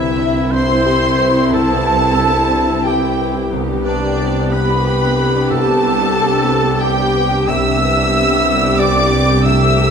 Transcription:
Already playing: felt piano C2 B4, double bass section C2, cello section C2, harp C3 G3 E4, french horn section C4 E4, viola section C4 E4, cor anglais E4, clarinet E4, violin section E5, flute section E5
0.00 felt piano E4
0.17 felt piano D4, harp G4
0.34 felt piano E4
0.51 felt piano D4, cor anglais C5, clarinet C5, flute section C6, violin section C6
0.64 harp E5
0.69 felt piano E4
0.86 felt piano G4
1.03 felt piano E4
1.09 harp G4
1.19 felt piano B4
1.32 harp E4, felt piano E4
1.51 felt piano C2, harp C3, cor anglais A4, clarinet A4, flute section A5, violin section A5
1.67 felt piano B3
1.76 harp G3
1.85 felt piano B4
1.97 harp E4, felt piano E4
2.18 felt piano D4, harp G4
2.34 felt piano E4
2.42 harp B4
2.51 felt piano D4
2.64 felt piano E4, harp E5
2.84 felt piano G4, cor anglais G4, harp B4, flute section G5, violin section G5
2.88 clarinet G4
3.02 felt piano E4
3.08 harp G4
3.19 felt piano B4
3.30 harp E4
3.35 felt piano E4
3.51 felt piano C2, double bass section C2, cello section C2, harp C3, viola section B3 G4, french horn section B3 G4
3.68 felt piano D4
3.74 harp G3
3.83 cor anglais D4, felt piano B4, flute section D5, violin section D5
3.88 clarinet D4
3.95 harp D4
4.01 felt piano D4
4.18 felt piano C4, harp G4
4.35 felt piano D4
4.41 harp B4
4.52 felt piano C4, cor anglais B4, clarinet B4, flute section B5, violin section B5
4.63 harp D5
4.69 felt piano D4
4.84 felt piano G4, harp B4
5.02 felt piano D4, harp G4
5.19 felt piano B4
5.28 harp D4
5.35 felt piano D4
5.49 felt piano C2, harp C3, cor anglais A4, clarinet A4, violin section A5, flute section A5
5.68 harp G3, felt piano B3
5.84 felt piano B4
5.93 harp D4
6.01 felt piano D4
6.15 felt piano C4, harp G4
6.34 felt piano D4
6.38 harp B4
6.50 felt piano C4
6.60 harp D5
6.66 felt piano D4
6.81 cor anglais G4, felt piano G4, clarinet G4, harp B4, violin section G5, flute section G5
6.98 felt piano D4
7.03 harp G4
7.15 felt piano B4
7.26 harp D4
7.31 felt piano D4
7.47 felt piano C2, double bass section C2, cello section C2, harp C3, viola section B3 G4, french horn section B3 G4, cor anglais E5, clarinet E5, violin section E6
7.52 flute section E6
7.66 felt piano D4
7.70 harp G3
7.83 felt piano B4
7.91 harp D4
7.97 felt piano D4
8.12 felt piano C4, harp G4
8.31 felt piano D4, harp B4
8.47 felt piano C4
8.56 harp D5
8.63 felt piano D4
8.77 felt piano G4, harp B4, cor anglais D5, clarinet D5, flute section D6, violin section D6
8.95 felt piano D4
9.01 harp G4
9.12 felt piano B4
9.23 harp D4
9.29 felt piano D4
9.43 felt piano C2, harp C3, viola section A3, french horn section A3, cor anglais E5, clarinet E5, flute section E6, violin section E6
9.63 felt piano C4
9.67 harp G3
9.79 felt piano A4

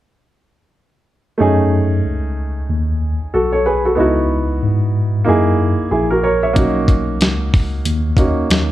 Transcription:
1.38 tine electric piano F#2, upright piano A3 C#4 D#4 G#4
2.05 tine electric piano C#2
2.69 tine electric piano D#2
3.21 tine electric piano B1
3.34 tine electric piano B1, upright piano F#4 A4
3.52 upright piano A4 C#5
3.66 upright piano G#4 B4
3.85 upright piano F#4 A4
3.95 tine electric piano C#2, upright piano B3 D#4 E4
4.00 upright piano F#4
4.63 tine electric piano G#2
5.24 tine electric piano F#2, upright piano A#3 D#4 E4
5.29 upright piano G#4
5.79 tine electric piano A#1
5.91 tine electric piano A#1, upright piano E4 G#4
6.10 upright piano F#4 A#4
6.23 upright piano A#4 C#5
6.43 upright piano C#5 E5
6.53 tine electric piano B1, upright piano A#3 C#4 D#4, kick, closed hi-hat
6.58 upright piano F#4
6.88 kick, closed hi-hat
7.21 tine electric piano C#2, snare, closed hi-hat
7.54 kick, open hi-hat
7.85 tine electric piano D#2, closed hi-hat
8.17 upright piano A#3 C#4 D#4 F#4, kick, closed hi-hat
8.50 tine electric piano D#2, snare, closed hi-hat

